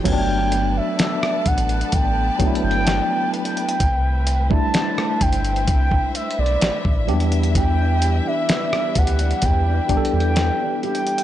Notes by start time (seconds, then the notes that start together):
Already playing: F3 A3 E4 G4
0.04 G1 F#3 A3 B3 C#4 A4 B4 D5 G5 A5, kick, closed hi-hat, crash
0.12 D4
0.52 closed hi-hat
0.77 E5
0.99 snare, closed hi-hat
1.23 cross-stick
1.46 A1 F#5, kick, closed hi-hat
1.58 closed hi-hat
1.69 closed hi-hat
1.81 closed hi-hat
1.92 A1 G5, kick, closed hi-hat
2.39 F#3 A3 B3 D4, kick, closed hi-hat
2.47 E4
2.55 closed hi-hat
2.64 G1 G5
2.71 closed hi-hat
2.87 snare, closed hi-hat
3.34 closed hi-hat
3.45 closed hi-hat
3.57 closed hi-hat
3.69 closed hi-hat
3.80 C2 A3 E4 C5 E5, kick, closed hi-hat
4.27 closed hi-hat
4.50 G3 A3 D4 E4 A5, kick
4.74 snare, closed hi-hat
4.98 cross-stick
5.21 G1 G5, kick, closed hi-hat
5.33 closed hi-hat
5.45 closed hi-hat
5.56 closed hi-hat
5.67 C2 G5, kick, closed hi-hat
5.91 kick
6.15 E5, closed hi-hat
6.31 closed hi-hat
6.39 B1 D5
6.46 closed hi-hat
6.61 A1, snare, closed hi-hat
6.85 A1, kick
7.07 E2 F#3 G3 B3 D4 G4 B4, closed hi-hat
7.14 G3
7.20 closed hi-hat
7.32 closed hi-hat
7.43 closed hi-hat
7.55 E3 G4 G5, kick, closed hi-hat
7.79 D4
8.02 G4, closed hi-hat
8.26 D4 E5
8.49 B3, snare, closed hi-hat
8.73 D4, cross-stick
8.95 D2 G4 F#5, kick, closed hi-hat
9.07 closed hi-hat
9.19 D4, closed hi-hat
9.31 closed hi-hat
9.42 E2 E3 G4 G5, kick, closed hi-hat
9.67 D4
9.89 G3 B3 D4 G4, kick, closed hi-hat
9.97 A4
10.05 closed hi-hat
10.13 E2 D4 G5
10.20 closed hi-hat
10.36 B3, snare, closed hi-hat
10.60 D4
10.83 G4 G5, closed hi-hat
10.95 closed hi-hat
11.07 D4, closed hi-hat
11.18 closed hi-hat